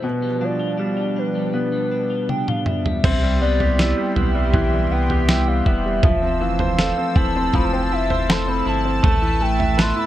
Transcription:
Already playing: analog synth pad B2, clean electric guitar A3 E4
0.03 clean electric guitar B2, grand piano B2, analog synth pad F3 G3 D4
0.07 soft synth lead B4
0.22 clean electric guitar G3
0.41 grand piano F3, clean electric guitar D4, soft synth lead D5
0.59 clean electric guitar F4
0.78 grand piano G3, clean electric guitar D4
0.97 clean electric guitar F4
1.16 clean electric guitar D4, soft synth lead B4
1.35 clean electric guitar G3
1.53 clean electric guitar B2, grand piano B3
1.72 clean electric guitar G3
1.91 clean electric guitar D4
2.10 clean electric guitar F4
2.29 clean electric guitar D4, soft synth lead G5, high tom
2.48 clean electric guitar F4, soft synth lead F5, mid tom
2.66 clean electric guitar D4, soft synth lead E5, mid tom
2.86 clean electric guitar G3, floor tom
3.04 sub bass C2, grand piano C4, clean electric guitar E4, analog synth pad G4 E5 G5 C6, kick, floor tom, crash
3.23 grand piano G3
3.41 clean electric guitar G3, grand piano B3, soft synth lead D5
3.60 grand piano G4, floor tom
3.79 clean electric guitar B3, grand piano E4, snare
3.97 grand piano G3
4.16 sub bass B1, grand piano B3, clean electric guitar E4, soft synth lead E5, floor tom
4.35 grand piano G3
4.54 grand piano E3, clean electric guitar E3, kick, floor tom
4.74 grand piano G3
4.90 sub bass C2, clean electric guitar B3, grand piano B3, soft synth lead G5
5.10 grand piano G4, floor tom
5.28 clean electric guitar G3, grand piano E4, soft synth lead G5, snare
5.47 grand piano G3, soft synth lead F5
5.66 sub bass E1, grand piano B3, clean electric guitar E4, soft synth lead E5, kick
5.86 grand piano G3
6.03 sub bass F1, clean electric guitar F3, grand piano F3, analog synth pad C5 A5 E6, kick, floor tom
6.22 grand piano C4
6.41 grand piano E3, clean electric guitar A3, soft synth lead F5
6.59 grand piano C5, floor tom
6.79 clean electric guitar C4, grand piano A4, snare
6.98 grand piano C4
7.16 sub bass E1, clean electric guitar E4, grand piano E4, soft synth lead A5, kick, floor tom
7.36 grand piano C4
7.54 sub bass F1, grand piano F3, clean electric guitar A3, soft synth lead B5, kick, floor tom
7.64 soft synth lead A5
7.72 grand piano C4, soft synth lead G5
7.83 soft synth lead A5
7.92 clean electric guitar C4, grand piano E4, soft synth lead E5
8.10 grand piano C5, floor tom
8.29 clean electric guitar A3, grand piano A4, soft synth lead C6, snare
8.48 grand piano C4, soft synth lead B5
8.66 sub bass G1, grand piano E4, clean electric guitar E4, soft synth lead A5
8.85 grand piano C4
9.03 sub bass A1, clean electric guitar A2 E4, grand piano A3, analog synth pad B4 E5 E6, kick, floor tom
9.22 grand piano E4
9.41 clean electric guitar A3, grand piano A4, soft synth lead G5
9.59 grand piano E5, floor tom
9.78 clean electric guitar B3, grand piano B4, soft synth lead C6, snare
9.96 grand piano E4, soft synth lead B5

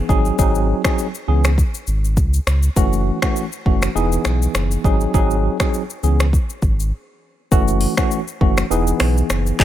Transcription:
0.09 sub bass G#1, tine electric piano F#3 C4 D#4 G#4, kick, shaker
0.25 shaker
0.38 sub bass G#1, tine electric piano F#3 C4 D#4 G#4, kick, shaker
0.55 shaker
0.84 tine electric piano F#3 C4 D#4 G#4, finger snap, kick, cross-stick, shaker
0.98 shaker
1.15 shaker
1.28 sub bass C#2, tine electric piano E3 B3 C#4 G#4
1.44 finger snap, cross-stick, shaker
1.58 kick, shaker
1.74 shaker
1.87 sub bass G#1, shaker
2.05 shaker
2.17 sub bass C#2, kick, shaker
2.34 shaker
2.47 sub bass C#2, finger snap, cross-stick, shaker
2.63 shaker
2.76 sub bass F#1, tine electric piano E3 A3 C#4 F#4, kick, shaker
2.93 shaker
3.22 tine electric piano E3 A3 C#4 F#4, finger snap, kick, cross-stick, shaker
3.36 shaker
3.52 shaker
3.65 sub bass F#1, tine electric piano E3 A3 C#4 F#4, kick
3.82 finger snap, cross-stick, shaker
3.95 sub bass E1, tine electric piano E3 B3 D#4 G#4, shaker
4.12 shaker
4.25 sub bass B1, finger snap, cross-stick, shaker
4.42 shaker
4.55 sub bass F#1, finger snap, cross-stick, shaker
4.71 shaker
4.84 sub bass G#1, tine electric piano F#3 C4 D#4 G#4, kick, shaker
5.00 shaker
5.14 sub bass G#1, tine electric piano F#3 C4 D#4 G#4, kick, shaker
5.31 shaker
5.60 tine electric piano F#3 C4 D#4 G#4, finger snap, kick, cross-stick, shaker
5.74 shaker
5.90 shaker
6.03 sub bass C#2, tine electric piano E3 B3 C#4 G#4, shaker
6.20 finger snap, cross-stick, shaker
6.33 kick, shaker
6.50 shaker
6.62 sub bass G#1, kick, shaker
6.80 shaker
7.51 sub bass F#1, tine electric piano E3 A3 C#4 F#4, kick, shaker
7.68 shaker
7.81 open hi-hat
7.97 tine electric piano E3 A3 C#4 F#4, finger snap, kick, cross-stick, shaker
8.11 shaker
8.28 shaker
8.41 sub bass F#1, tine electric piano E3 A3 C#4 F#4, kick
8.57 finger snap, cross-stick, shaker
8.70 sub bass E1, tine electric piano E3 B3 D#4 G#4, shaker
8.87 shaker
9.00 sub bass B1, finger snap, cross-stick, open hi-hat, shaker
9.17 shaker
9.30 sub bass F#1, finger snap, cross-stick, shaker
9.46 shaker
9.59 sub bass G#1, tine electric piano F#3 C4 D#4 G#4, kick, clap, shaker

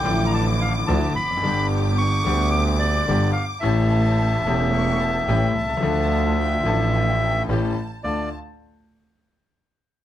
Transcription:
Already playing: bandoneon G5, violin section D6
0.03 grand piano A1 A2 D3 F3 A3 E4, double bass A1, string section F3 D4 E4
0.26 bandoneon A#5
0.34 bandoneon A5
0.61 bandoneon F5
0.87 grand piano D2 D3 F3 A3 E4, double bass D2, string section F3 D4 E4, bandoneon A5
1.16 double bass F1, bandoneon B5
1.23 grand piano E2
1.31 grand piano F2
1.37 grand piano F#2
1.42 double bass G1, grand piano G1 G2 D3 G3 B3, string section B3 D4 G4, violin section D6
1.46 grand piano G4
1.98 bandoneon C#6
2.24 double bass D2, grand piano D2 D3 G3 B3, string section B3 D4 G4
2.28 grand piano G4
2.51 bandoneon D6
2.79 bandoneon D5
3.08 double bass G1, grand piano G1 G2 D3 G3 B3 G4, string section B3 D4 G4
3.32 bandoneon F5
3.60 double bass A1, grand piano A1 A2 E3 A3 C#4, string section A3 C#4 G4, bandoneon E5, violin section A5
3.65 grand piano G4
4.45 double bass E1, grand piano E1 E2 E3 A3 C#4 G4, string section A3 C#4 G4
4.71 violin section C#6
5.00 violin section A5
5.27 double bass A1, grand piano A1 A2 E3 A3 C#4 G4, string section A3 C#4 G4, violin section G5
5.55 double bass C2, violin section A5
5.63 grand piano B1
5.70 grand piano C2
5.77 grand piano C#2 F3
5.82 double bass D2, grand piano D2 D3 A3 D4 A4, string section A3 D4 F4, violin section A5
6.40 violin section G5
6.63 double bass A1, grand piano A1 A2 F3 A3 D4, string section A3 D4 F4, violin section A5
6.68 grand piano A4
6.96 violin section G5
7.48 double bass A1, grand piano A1 A2 E3 A3 C#4 G4, string section A3 C#4 G4, violin section A5
8.04 double bass D2, grand piano D2 A3 D4 F4, string section A3 D4 F4, bandoneon D5, violin section A5

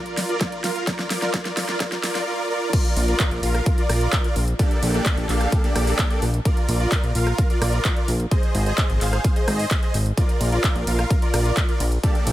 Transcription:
Already playing: supersaw synth F4 A#4 D5
0.06 closed hi-hat
0.17 snare, open hi-hat
0.29 supersaw synth F4 A#4 D5, closed hi-hat
0.41 kick, snare, closed hi-hat
0.52 closed hi-hat
0.64 supersaw synth F4 A#4 F5, snare, open hi-hat
0.76 closed hi-hat
0.87 supersaw synth F4 A#4 D5, kick, snare, closed hi-hat
0.99 snare, closed hi-hat
1.10 snare, open hi-hat
1.22 supersaw synth F4 A#4 D5, snare, closed hi-hat
1.34 supersaw synth F4 A#4 D5, kick, snare, closed hi-hat
1.45 snare, closed hi-hat
1.57 snare, open hi-hat
1.69 supersaw synth F4 A#4 D5, snare, closed hi-hat
1.80 supersaw synth F4 A#4 D5, kick, snare, closed hi-hat
1.92 snare, closed hi-hat
2.03 supersaw synth F4 A#4 D5, snare, open hi-hat
2.15 snare, open hi-hat
2.27 supersaw synth F4 A#4 D5
2.50 supersaw synth F4 A#4 D5
2.73 supersaw synth F4, kick, closed hi-hat, crash
2.85 closed hi-hat
2.97 analog synth bass A#1, open hi-hat
3.08 supersaw synth F4 A#4 D5, closed hi-hat
3.20 kick, clap, closed hi-hat
3.31 analog synth bass A#1, closed hi-hat
3.43 analog synth bass A#1, supersaw synth F4 A#4 F5, open hi-hat
3.55 cross-stick, closed hi-hat
3.66 kick, closed hi-hat
3.78 supersaw synth F4 A#4 D5, closed hi-hat
3.89 analog synth bass A#1, cross-stick, open hi-hat
4.01 closed hi-hat
4.13 kick, clap, closed hi-hat
4.24 supersaw synth F4 A#4 D5, closed hi-hat
4.36 analog synth bass A#1, open hi-hat
4.48 closed hi-hat
4.59 supersaw synth A#3 D4 G4 A4 D5, kick, closed hi-hat
4.71 closed hi-hat
4.83 analog synth bass A#1, open hi-hat
4.94 supersaw synth A#3 D4 G4 A4 D5, closed hi-hat
5.06 kick, clap, closed hi-hat
5.17 analog synth bass A#1, closed hi-hat
5.29 analog synth bass A#1, supersaw synth A#3 D4 G4 A4 F5, clap, open hi-hat
5.41 cross-stick, closed hi-hat
5.52 kick, closed hi-hat
5.64 supersaw synth A#3 D4 G4 A4 D5, closed hi-hat
5.76 analog synth bass A#1, cross-stick, open hi-hat
5.87 open hi-hat
5.99 kick, clap, closed hi-hat
6.10 supersaw synth A#3 D4 G4 A4 D5, closed hi-hat
6.22 analog synth bass A#1, open hi-hat
6.34 closed hi-hat
6.45 supersaw synth F4 A#4 D5, kick, closed hi-hat
6.57 closed hi-hat
6.69 analog synth bass A#1, open hi-hat
6.80 supersaw synth F4 A#4 D5, closed hi-hat
6.92 kick, clap, closed hi-hat
7.04 analog synth bass A#1, closed hi-hat
7.15 analog synth bass A#1, supersaw synth F4 A#4 F5, open hi-hat
7.27 cross-stick, closed hi-hat
7.38 kick, closed hi-hat
7.50 supersaw synth F4 A#4 D5, closed hi-hat
7.62 analog synth bass A#1, cross-stick, open hi-hat
7.73 closed hi-hat
7.85 kick, clap, closed hi-hat
7.96 supersaw synth F4 A#4 D5, closed hi-hat
8.08 analog synth bass A#1, open hi-hat
8.20 closed hi-hat
8.31 supersaw synth G#4 C5 D#5, kick, closed hi-hat
8.43 closed hi-hat
8.55 analog synth bass G#1, open hi-hat
8.66 supersaw synth G#4 C5 D#5, closed hi-hat
8.78 kick, clap, closed hi-hat
8.89 analog synth bass G#1, closed hi-hat
9.01 analog synth bass G#1, supersaw synth G#4 C5 F5, clap, open hi-hat
9.13 cross-stick, closed hi-hat
9.24 kick, closed hi-hat
9.36 supersaw synth G#4 C5 D#5, closed hi-hat
9.48 analog synth bass G#1, cross-stick, open hi-hat
9.59 open hi-hat
9.71 kick, clap, closed hi-hat
9.83 supersaw synth G#4 C5 D#5, closed hi-hat
9.94 analog synth bass G#1, open hi-hat
10.06 closed hi-hat
10.17 supersaw synth F4 A#4 D5, kick, closed hi-hat
10.29 closed hi-hat
10.41 analog synth bass A#1, open hi-hat, ride
10.52 supersaw synth F4 A#4 D5, closed hi-hat
10.64 kick, clap, closed hi-hat
10.76 analog synth bass A#1, closed hi-hat
10.87 analog synth bass A#1, supersaw synth F4 A#4 F5, open hi-hat, ride
10.99 cross-stick, closed hi-hat
11.10 kick, closed hi-hat
11.22 supersaw synth F4 A#4 D5, closed hi-hat
11.34 analog synth bass A#1, cross-stick, open hi-hat, ride
11.45 closed hi-hat
11.57 kick, clap, closed hi-hat
11.69 supersaw synth F4 A#4 D5, closed hi-hat
11.80 analog synth bass A#1, open hi-hat, ride
11.92 closed hi-hat
12.04 supersaw synth A#3 D4 G4 A4 D5, kick, closed hi-hat
12.15 closed hi-hat
12.27 analog synth bass A#1, open hi-hat, ride

